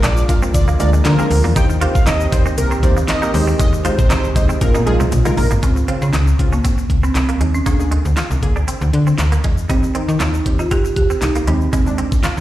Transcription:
Already playing: D3 F3 G#3 A#3 F4 A#4
0.03 A#1 D4 D5, snare, clap, closed hi-hat, shaker
0.17 shaker
0.29 C2 G#3 D4 F4 A#4 F5, muted clean electric guitar stroke, kick, closed hi-hat, shaker
0.42 C4, shaker
0.54 D2 D5, kick, closed hi-hat, shaker
0.68 A#3, shaker
0.80 D2 G#3 D4 F4 A#4 D5, muted clean electric guitar stroke, closed hi-hat, shaker
0.93 G#3, shaker
1.05 D3 A#4, snare, clap, closed hi-hat, shaker
1.19 G#3 C4 D4 F4 A#4, shaker
1.31 D2, muted clean electric guitar stroke, open hi-hat, shaker
1.44 E2 A#3, shaker
1.56 D#2 D#3 A#3 C4 D#4 G4 C5 G5, kick, closed hi-hat, shaker
1.70 muted clean electric guitar stroke, shaker
1.81 A#3 D#4 F4 G4 C5, closed hi-hat
1.95 C2 F5, kick, shaker
2.06 D#2 D#4 D#5, snare, clap, closed hi-hat, shaker
2.21 shaker
2.32 D#2 A#3 D#4 G4 C5 D5, muted clean electric guitar stroke, kick, closed hi-hat, shaker
2.46 C4, shaker
2.58 C2 A#4, closed hi-hat, shaker
2.71 C4, shaker
2.83 D#2 A#3 D#4 G4 C5 D5, muted clean electric guitar stroke, kick, closed hi-hat, shaker
2.97 A#3, shaker
3.08 D#5, snare, clap, closed hi-hat, shaker
3.22 A#3 D#4 G4 A#4, shaker
3.34 D#2 G#3 D#4 G4 C5, muted clean electric guitar stroke, open hi-hat, shaker
3.47 C4, shaker
3.59 D#2 G#3 D#5, kick, closed hi-hat, shaker
3.73 muted clean electric guitar stroke, shaker
3.85 G#3 D#4 F4 G4 C5, closed hi-hat, shaker
3.98 A#1 C5, kick, shaker
4.10 C2 D#4 C5, snare, clap, closed hi-hat, shaker
4.24 shaker
4.36 D#2 G#3 D#4 G4 C5 D#5, muted clean electric guitar stroke, kick, closed hi-hat, shaker
4.49 C4, shaker
4.61 A#1 F3 G#3 A#3 D#4 F4 A#4, kick, closed hi-hat, high tom, shaker
4.75 A#2 D#4, high tom, shaker
4.86 A#1 G#3 D#4 F4 G#4, muted clean electric guitar stroke, closed hi-hat, mid tom
5.00 C2 C4, mid tom, shaker
5.12 A#1, closed hi-hat, mid tom, shaker
5.25 G#3 A#3 D#4 F4 A#4, closed hi-hat, mid tom, shaker
5.37 A#1 A#4, muted clean electric guitar stroke, floor tom, open hi-hat, shaker
5.51 G#1 A#3, closed hi-hat, floor tom, shaker
5.63 C#2 C#3 C4 C#4 F4, kick, closed hi-hat, shaker
5.76 muted clean electric guitar stroke, shaker
5.88 C#3 C4 F4, closed hi-hat
6.02 C#3 C#4, shaker
6.13 C#2 D#4, snare, clap, closed hi-hat, shaker
6.27 muted clean electric guitar stroke, shaker
6.39 C#2 C#3 C4 F4, kick, closed hi-hat
6.53 A#3 C#4, shaker
6.64 C2 C4, kick, closed hi-hat, shaker
6.78 muted clean electric guitar stroke, shaker
6.90 C#2, kick, closed hi-hat
7.03 C4, shaker
7.15 C2 C4, muted clean electric guitar stroke, snare, clap, closed hi-hat, shaker
7.29 A#3, closed hi-hat, shaker
7.41 D#2 G#3, closed hi-hat
7.54 C#4, shaker
7.66 D2 D3 A#3 D4 G#4, kick, closed hi-hat, shaker
7.79 D3 A#3 G#4, muted clean electric guitar stroke, shaker
7.91 G#3, closed hi-hat
8.05 D2, shaker
8.17 F4, snare, clap, closed hi-hat, shaker
8.31 C2, muted clean electric guitar stroke, shaker
8.43 D3 A#3 G#4, kick, closed hi-hat
8.56 D2 D4, shaker
8.68 C4, closed hi-hat, shaker
8.81 D2, muted clean electric guitar stroke, shaker
8.93 D3, closed hi-hat
9.07 C4, shaker
9.18 D2, muted clean electric guitar stroke, snare, clap, closed hi-hat, shaker
9.32 A#3, closed hi-hat, shaker
9.44 E2 G#3, kick, closed hi-hat
9.58 shaker
9.69 D#2 D#3 C4 D#4 G4, kick, closed hi-hat, shaker
9.83 muted clean electric guitar stroke, shaker
9.95 D#3 C4 D#4, closed hi-hat
10.09 D#3 D#4, shaker
10.20 D#2 F4, snare, clap, closed hi-hat, shaker
10.34 muted clean electric guitar stroke, shaker
10.46 D#2 D#3 C4 G4, kick, closed hi-hat
10.59 D#4 F4, shaker
10.71 C2 C4 G4, kick, closed hi-hat, shaker
10.85 muted clean electric guitar stroke, shaker
10.96 D#2 G4, kick, closed hi-hat
11.10 C4, shaker
11.22 C2 D#4, muted clean electric guitar stroke, snare, clap, closed hi-hat, shaker
11.35 A#3, closed hi-hat, shaker
11.47 D#2 C3 G#3 C4 G4, closed hi-hat
11.61 shaker
11.73 D#2 G#3 C4, kick, closed hi-hat, shaker
11.86 C3 G#3 D4, muted clean electric guitar stroke, shaker
11.98 C4, closed hi-hat
12.12 C2, kick, shaker
12.23 F4, snare, clap, closed hi-hat, shaker
12.37 D#2, muted clean electric guitar stroke

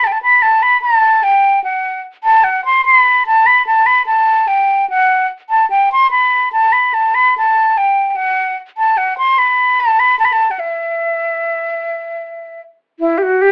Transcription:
0.04 G5 A5
0.12 A5
0.22 B5
0.42 A5
0.63 B5
0.82 A5
1.23 G5
1.64 F#5
2.24 A5
2.44 F#5
2.65 C6
2.86 B5
3.27 A5
3.46 B5
3.67 A5
3.86 B5
4.06 A5
4.48 G5
4.90 F#5
5.50 A5
5.70 G5
5.92 C6
6.11 B5
6.53 A5
6.73 B5
6.94 A5
7.15 B5
7.38 A5
7.78 G5
8.10 G5
8.16 F#5
8.78 A5
8.97 F#5
9.18 C6
9.38 B5
9.80 A5
10.00 B5
10.19 A5
10.25 B5
10.33 A5
10.51 F#5
10.59 E5
13.00 E4
13.18 G4
13.22 F#4
13.42 G4

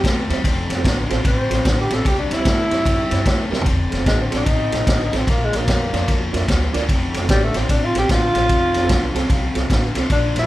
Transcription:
0.04 E2 C3 A3, kick, snare, ride
0.29 E2 C3 G3 C4 E4 G4 C5, snare, ride
0.44 F1 F2 C3, kick, snare, ride
0.69 F1 A4 C5, snare, ride
0.77 C4 F4 A4 C5
0.85 A1 F2 D3, kick, snare, ride
1.10 A1 F2 C3 C4 F4 A4 C5, snare, ride
1.25 A1 F2 C3 C5, kick, snare, ride
1.50 A1 C4 F4 A4 C5, snare, ride
1.65 A1 F2 D3, kick, snare, ride
1.81 G4
1.91 A1 F2 C3 C4 F4 A4 C5, snare, ride
1.95 A4
2.05 C2 C3 G3 G4, kick, snare, ride
2.19 D4
2.30 C2 G4 C5, snare, ride
2.34 E4
2.38 C4 E4 G4 C5
2.45 G2 C3 A3, kick, snare, ride
2.71 G2 C3 G3 C4 E4 G4 C5, snare, ride
2.85 G2 C3 G3, kick, snare, ride
3.10 G2 C4 E4 G4 C5, snare, ride
3.26 E2 C3 A3, kick, snare, ride
3.51 E2 C3 G3 C4 E4 G4 A#4, snare
3.61 F2, floor tom
3.65 F1 C3, kick, snare, ride
3.90 F1 A4 C5, snare, ride
3.98 C4 F4 A4 C5
4.06 A1 F2 D3 G#3, kick, snare, ride
4.21 C4
4.31 A1 F2 C3 C4 F4 A4 D5, snare, ride
4.36 D#4
4.46 A1 F2 C3, kick, snare, ride
4.71 A1 C4 F4 A4 C5, snare, ride
4.87 A1 F2 D3, kick, snare, ride
5.12 A1 F2 C3 C4 F4 A4 C5, snare, ride
5.18 C4
5.27 A#1 A#2 F3 A#3, kick, snare, ride
5.44 G#3
5.52 A#1 A#3 A#4 D5, snare, ride
5.59 D4 F4 A#4 D5
5.67 F2 A#2 G3, kick, snare, ride
5.92 F2 A#2 F3 D4 F4 A#4 D5, snare, ride
6.08 F2 A#2 F3, kick, snare, ride
6.33 F2 D4 F4 A#4 E5, snare, ride
6.48 D2 A#2 G3, kick, snare, ride
6.73 D2 A#2 F3 D4 F4 A#4 D5, snare, ride
6.89 F1 F2 C3, kick, snare, ride
7.14 F1 A4 C5, snare, ride
7.21 C4 F4 A4 C5
7.29 A1 F2 D3 G3, kick, snare, ride
7.44 A3
7.54 A1 F2 C3 C4 F4 A4 C5, snare, ride
7.69 A1 F2 C3 D4, kick, snare, ride
7.85 F4
7.94 A1 C4 F4 G4 A4 C5, snare, ride
8.09 A1 F2 D3 F4, kick, snare, ride
8.35 A1 F2 C3 C4 F4 A4 C5, snare, ride
8.49 F1 F2 C3, kick, snare, ride
8.74 F1 A4 C5, snare, ride
8.82 C4 F4 A4 C5
8.89 C2 F2 D3, kick, snare, ride
9.15 C2 F2 C3 C4 F4 A4 C5 A5, snare, ride
9.30 C2 F2 C3 F5, kick, snare, ride
9.55 C2 C4 F4 A4 C5, snare, ride
9.70 A1 F2 D3 F5, kick, snare, ride
9.95 C2 F2 C3 C4 F4 A4 C5, snare, ride
10.10 A#1 A#2 F3 D4, kick, snare, ride
10.35 A#1 F4 A#4 D5, snare, ride
10.43 D4 F4 A#4

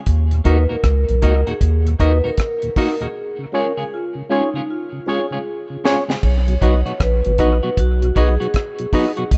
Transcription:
0.06 D#2, kick, closed hi-hat
0.31 D#2 A#2, closed hi-hat
0.44 D#2 A#3 D#4 F#4 A#4 B4 D#5, kick, closed hi-hat
0.69 D#2 A#2 A#3 D#4 F#4 A#4
0.84 C#2, kick, cross-stick, closed hi-hat
1.08 B1 D#2 A#2, closed hi-hat
1.22 C#2 A#3 D#4 F#4 A#4 D#5, kick, closed hi-hat
1.47 D#2 A#2 A#3 D#4 F#4 G#4 A#4, closed hi-hat
1.61 D#2, kick, closed hi-hat
1.85 D#2 A#2, closed hi-hat
1.99 D#2 A#3 D#4 F#4 A#4 B4 D#5, kick, closed hi-hat
2.24 D#2 A#2 A#3 D#4 F#4 A#4
2.38 kick, cross-stick, closed hi-hat
2.62 D#2 A#2, closed hi-hat
2.76 A#3 D#4 F#4 A#4 D#5, kick, open hi-hat
3.00 D#2 A#2 A#3 D#4 F#4 G#4 A#4 D#5, closed hi-hat
3.39 C#3
3.52 G#3 C#4 F4 G#4 A#4 C#5
3.77 C#3 G#3 C#4 F4 G#4
3.94 F4
4.15 C#3
4.29 G#3 C#4 D#4 F4 G#4 C#5
4.54 C#3 G#3 C#4 F4 G#4
4.70 F4
4.92 C#3
5.06 G#3 C#4 F4 G#4 C#5
5.31 C#3 G#3 C#4 F4 G#4 C#5
5.70 C#3
5.84 G#3 C#4 F4 G#4 C#5, snare
6.08 C#3 G#3 C#4 F4 G#4, snare
6.23 B1 C#5, kick, crash
6.48 B2 F#3, closed hi-hat
6.61 B1 F#3 B3 D#4 F#4 B4 D#5, kick, closed hi-hat
6.86 B2 F#3 B3 D#4 F#4, closed hi-hat
7.00 A#1 B4, kick, cross-stick, closed hi-hat
7.25 G#1 B2 F#3, closed hi-hat
7.38 A#1 F#3 B3 D#4 F#4 B4 D#5, kick, cross-stick, closed hi-hat
7.63 B2 F#3 B3 D#4 F#4
7.77 B1 F#4, kick, closed hi-hat
8.02 B2 F#3, closed hi-hat
8.15 B1 F#3 B3 D#4 F#4 G#4 B4 D#5, kick, closed hi-hat
8.40 B2 F#3 B3 D#4 F#4, closed hi-hat
8.54 kick, cross-stick, closed hi-hat
8.79 B2 F#3, closed hi-hat
8.93 F#3 B3 D#4 F#4 B4 D#5, kick, open hi-hat
9.17 B2 F#3 B3 D#4 F#4, closed hi-hat
9.31 C#2 D#5, kick, closed hi-hat

